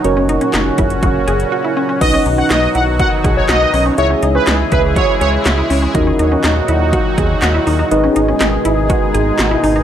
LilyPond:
<<
  \new Staff \with { instrumentName = "Analog polysynth" } { \time 4/4 \key b \major \tempo 4 = 122 r1 | dis''8 r16 fis''16 dis''8 fis''16 r16 fis''16 r8 cis''16 dis''8. r16 | cis''16 r8 b'8 r16 b'16 r16 cis''8 cis''16 r4 r16 | r1 |
r1 | }
  \new Staff \with { instrumentName = "Synth keys" } { \time 4/4 \key b \major <cis' fis' ais' cis''>1 | <dis' fis' b' dis''>1 | <e' gis' cis'' e''>1 | <dis' fis' ais' dis''>1 |
<dis' gis' b' dis''>1 | }
  \new Staff \with { instrumentName = "Synth arpeggio sound" } { \time 4/4 \key b \major r16 cis'16 dis'16 cis'16 dis'8 e'8 fis'8 gis'8 fis'16 e'16 cis'16 cis'16 | r16 cis'16 dis'16 cis'16 dis'8 e'8 fis'8 gis'8 fis'16 dis'16 cis'16 cis'16 | r16 cis'16 dis'16 cis'16 dis'8 e'8 fis'8 gis'8 fis'16 e'16 cis'16 cis'16 | r16 cis'16 dis'16 cis'16 dis'8 e'8 fis'8 gis'8 fis'16 e'16 dis'16 dis'16 |
r16 cis'16 dis'16 cis'16 dis'8 e'8 fis'8 gis'8 fis'16 e'16 dis'16 dis'16 | }
  \new Staff \with { instrumentName = "Analog synth pad" } { \clef bass \time 4/4 \key b \major << { <ais, fis cis' fis'>1 | <b, fis dis' fis'>1 | <cis gis e' gis'>1 | <ais, fis dis' fis'>1 |
<b, gis dis' gis'>1 | } \\ { cis1 | dis1 | e1 | dis1~ |
dis1 | } >> }
  \new Staff \with { instrumentName = "Analog synth bass" } { \clef bass \time 4/4 \key b \major fis,,4 fis,,8 fis,,8 fis,,8 fis,,8 r4 | b,,8 b,,8 b,,8 b,,8. r16 b,,8 b,,8 b,,8 | cis,8 cis,8 cis,8 cis,8. r16 cis,8 cis,8 cis,8 | dis,8 dis,8 dis,8 dis,8. r16 dis,8 dis,8 dis,8 |
gis,,8 gis,,8 gis,,8 gis,,8. r16 gis,,8 gis,,8 gis,,8 | }
  \new DrumStaff \with { instrumentName = "Drums" } \drummode { \time 4/4 hh8 hh16 hh16 <hc hh sn>8 <hh bd>16 hh16 <hh bd>8 hh16 hh16 r4 | <cymc hh bd>8 hh8 <hc hh sn>8 hh8 <hh bd>8 <hh bd>8 <hc hh sn>8 hho8 | hh8 hh8 <hc hh sn>8 <hh bd>8 <hh bd>8 hh8 <hc hh sn>8 hho8 | <hh bd>8 hh8 <hc hh sn>8 hh8 <hh bd>8 <hh bd>8 <hc hh sn>8 hho8 |
hh8 hh8 <hc hh sn>8 hh8 <hh bd>8 hh8 <hc hh sn>8 hho8 | }
>>